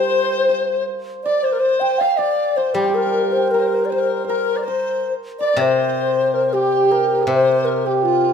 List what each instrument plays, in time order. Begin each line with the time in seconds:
Already playing: guzheng G3, hammered dulcimer F4 G4 A#4 C5, dizi C5, xiao C5
0.49 hammered dulcimer C5
1.24 xiao D5, dizi D5, hammered dulcimer D5
1.43 xiao C5, dizi C5
1.52 dizi A#4
1.59 dizi C5
1.80 xiao G5, hammered dulcimer G5
1.98 xiao F5, dizi F5, hammered dulcimer F5
2.11 xiao F5
2.18 xiao D5, dizi D5, hammered dulcimer D5
2.56 xiao C5, dizi C5, hammered dulcimer C5
2.74 guzheng G3, xiao G4, dizi G4, hammered dulcimer G4
2.84 hammered dulcimer G4
2.89 hammered dulcimer G4
2.94 hammered dulcimer G4, xiao A#4, dizi A#4
3.07 hammered dulcimer G4
3.14 hammered dulcimer G4
3.22 hammered dulcimer G4
3.30 hammered dulcimer G4, xiao C5
3.37 hammered dulcimer G4
3.47 xiao A#4, hammered dulcimer C5
3.51 dizi A#4, hammered dulcimer A#4
3.59 dizi C5
3.67 dizi A#4
3.74 dizi C5
3.82 dizi A#4, xiao D5
3.90 xiao C5, dizi C5, hammered dulcimer C5
3.99 dizi A#4
4.24 dizi A#4, xiao A#4, hammered dulcimer C5
4.29 hammered dulcimer A#4
4.56 dizi D5
4.63 dizi C5, xiao C5
4.68 hammered dulcimer C5
5.39 dizi D5, xiao D5, hammered dulcimer D5
5.54 guzheng C3, hammered dulcimer D5
5.60 xiao C5, dizi C5, hammered dulcimer C5
6.34 dizi A#4
6.46 dizi A#4
6.53 xiao G4, dizi G4, hammered dulcimer G4
6.85 hammered dulcimer C5
6.91 hammered dulcimer A#4, xiao A#4
7.27 guzheng C3, xiao C5, dizi C5, hammered dulcimer C5
7.65 xiao A#4, dizi A#4
7.86 dizi G4, xiao G4, hammered dulcimer G4
7.98 dizi G4
8.03 xiao F4, hammered dulcimer F4, dizi F4